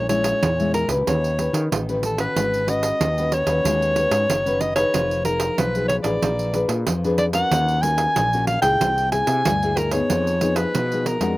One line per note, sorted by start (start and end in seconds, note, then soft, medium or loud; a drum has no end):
0.00 0.33 A#1 medium
0.00 0.39 A#2 medium
0.09 0.40 G#3 medium
0.09 0.40 C#4 medium
0.09 0.40 E4 medium
0.09 0.70 C#5 medium
0.09 pandeiro medium
0.24 pandeiro medium
0.42 0.83 E2 medium
0.42 1.04 A#2 medium
0.42 pandeiro medium
0.59 0.86 G#3 medium
0.59 0.86 C#4 medium
0.59 0.86 E4 medium
0.59 pandeiro soft
0.74 0.89 A#4 medium
0.74 pandeiro medium
0.88 1.03 C#2 medium
0.88 1.33 C#4 medium
0.88 1.33 G4 medium
0.88 1.33 B4 medium
0.88 pandeiro medium
1.07 1.48 D#2 medium
1.07 1.68 D#3 medium
1.07 1.68 C#5 medium
1.07 pandeiro medium
1.24 pandeiro soft
1.39 1.82 C#4 soft
1.39 1.82 G4 soft
1.39 1.83 B4 medium
1.39 pandeiro medium
1.53 1.68 D#3 medium
1.53 pandeiro medium
1.71 2.26 A1 medium
1.71 2.33 D#3 medium
1.71 pandeiro medium
1.89 2.15 C#4 medium
1.89 2.15 G4 medium
1.89 2.16 B4 medium
1.89 pandeiro soft
2.03 2.19 A4 medium
2.03 pandeiro medium
2.18 2.62 C#4 medium
2.18 2.62 F#4 medium
2.18 2.63 B4 medium
2.18 2.71 B4 medium
2.18 pandeiro medium
2.36 2.91 G#1 medium
2.36 2.97 G#3 medium
2.36 pandeiro medium
2.54 pandeiro soft
2.67 2.98 C#4 medium
2.67 2.98 F#4 medium
2.67 2.98 B4 medium
2.67 3.35 D#5 loud
2.67 pandeiro medium
2.83 pandeiro medium
3.00 3.42 D#2 medium
3.00 3.62 D#3 soft
3.00 pandeiro medium
3.18 3.44 C#4 medium
3.18 3.45 F#4 medium
3.18 3.45 B4 medium
3.18 pandeiro soft
3.32 4.62 C#5 loud
3.32 pandeiro medium
3.46 3.61 D#2 medium
3.46 3.92 C#4 medium
3.46 3.92 F#4 medium
3.46 3.92 B4 medium
3.46 pandeiro medium
3.64 4.06 D#2 medium
3.64 4.27 G#3 medium
3.64 pandeiro medium
3.82 pandeiro soft
3.96 4.28 C#4 soft
3.96 4.28 F#4 soft
3.96 4.28 B4 medium
3.96 pandeiro medium
4.11 4.26 G#2 medium
4.11 pandeiro medium
4.29 4.84 F#1 medium
4.29 4.91 D#3 medium
4.29 pandeiro medium
4.46 4.73 C#4 medium
4.46 4.73 F#4 medium
4.46 4.73 B4 medium
4.46 pandeiro soft
4.61 4.75 D#5 medium
4.61 pandeiro medium
4.76 5.20 D#4 medium
4.76 5.20 G#4 medium
4.76 5.21 B4 medium
4.76 5.22 C#5 medium
4.76 pandeiro medium
4.94 5.49 F1 medium
4.94 5.55 F3 medium
4.94 pandeiro medium
5.11 pandeiro soft
5.25 5.56 D#4 medium
5.25 5.56 G#4 soft
5.25 5.60 A#4 medium
5.25 pandeiro medium
5.40 pandeiro medium
5.58 5.99 B1 medium
5.58 6.20 F3 medium
5.58 5.87 B4 medium
5.58 pandeiro medium
5.75 6.02 D#4 medium
5.75 6.02 G#4 medium
5.75 6.02 B4 medium
5.75 pandeiro soft
5.88 5.96 C#5 medium
5.88 pandeiro medium
6.03 6.19 A1 medium
6.03 6.49 D4 medium
6.03 6.49 G#4 medium
6.03 6.49 B4 medium
6.03 6.65 D5 medium
6.03 pandeiro medium
6.22 6.64 A#1 medium
6.22 6.84 A#3 medium
6.22 pandeiro medium
6.39 pandeiro soft
6.54 6.85 D4 medium
6.54 6.85 G#4 medium
6.54 6.85 B4 medium
6.54 pandeiro soft
6.68 6.83 A#2 medium
6.68 pandeiro medium
6.87 7.42 F2 medium
6.87 7.48 F3 medium
6.87 pandeiro medium
7.04 7.31 D4 medium
7.04 7.31 G#4 medium
7.04 7.31 B4 medium
7.04 pandeiro soft
7.18 7.26 D5 medium
7.18 pandeiro medium
7.33 7.78 C#4 medium
7.33 7.78 F#4 medium
7.33 7.78 A#4 medium
7.33 7.84 F#5 loud
7.33 pandeiro medium
7.51 8.06 D#2 medium
7.51 8.13 D#3 medium
7.51 pandeiro medium
7.68 pandeiro soft
7.82 8.27 C#4 medium
7.82 8.27 F#4 medium
7.82 8.27 A#4 medium
7.82 8.47 G#5 loud
7.82 pandeiro medium
7.98 pandeiro medium
8.16 8.57 A#1 medium
8.16 8.78 A#2 medium
8.16 pandeiro medium
8.33 8.60 C#4 medium
8.33 8.61 F#4 medium
8.33 8.61 A#4 medium
8.33 pandeiro soft
8.47 8.61 F5 medium
8.47 pandeiro medium
8.62 8.77 C#2 medium
8.62 9.07 A#3 medium
8.62 9.07 E4 medium
8.62 9.07 G#4 medium
8.62 9.08 G5 loud
8.62 pandeiro medium
8.80 9.22 C2 medium
8.80 9.42 C3 medium
8.80 pandeiro medium
8.98 pandeiro soft
9.12 9.43 A#3 medium
9.12 9.43 E4 medium
9.12 9.43 G#4 medium
9.12 9.79 G#5 loud
9.12 pandeiro medium
9.27 9.42 C3 medium
9.27 pandeiro medium
9.45 10.00 D2 medium
9.45 10.07 G2 medium
9.45 pandeiro medium
9.63 9.89 A#3 medium
9.63 9.89 E4 medium
9.63 9.90 G#4 medium
9.63 pandeiro soft
9.77 9.94 A#4 medium
9.77 pandeiro medium
9.91 10.36 B3 medium
9.91 10.36 D#4 medium
9.91 10.37 G#4 medium
9.91 10.58 C#5 medium
9.91 pandeiro medium
10.10 10.65 F2 medium
10.10 10.72 F3 medium
10.10 pandeiro medium
10.27 pandeiro soft
10.41 10.85 B3 medium
10.41 10.85 D#4 medium
10.41 10.85 G#4 medium
10.41 pandeiro medium
10.56 11.08 B4 medium
10.56 pandeiro medium
10.75 11.16 B2 medium
10.75 11.36 F3 soft
10.75 pandeiro medium
10.92 11.18 B3 medium
10.92 11.19 D#4 medium
10.92 11.19 G#4 medium
10.92 pandeiro soft
11.06 11.38 A#4 medium
11.06 pandeiro medium
11.20 11.35 F2 medium
11.20 11.38 G#3 medium
11.20 11.38 D4 medium
11.20 11.38 F#4 medium
11.20 pandeiro medium